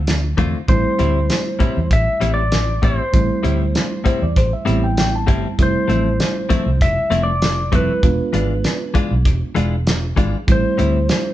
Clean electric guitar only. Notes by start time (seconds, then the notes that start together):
0.37 D3 A3 C4 F4
0.99 A2 G3 C4 E4
1.59 A2 G3 C4 E4
2.20 A2 G3 C4 E4
2.82 A2 G3 C4 E4
3.43 A2 G3 C4 E4
4.04 A2 G3 C4 E4
4.65 A2 G3 C4 E4
5.27 A2 G3 C4 E4
5.88 F3 A3 C4 E4
6.49 F3 A3 C4 E4
7.10 F3 A3 C4 E4
7.72 F3 A3 C4 E4
8.33 E3 G#3 D4 F4
8.94 E3 G#3 D4 F4
9.55 E3 G#3 D4 F4
10.16 E3 G#3 D4 F4
10.78 A2 G3 C4 E4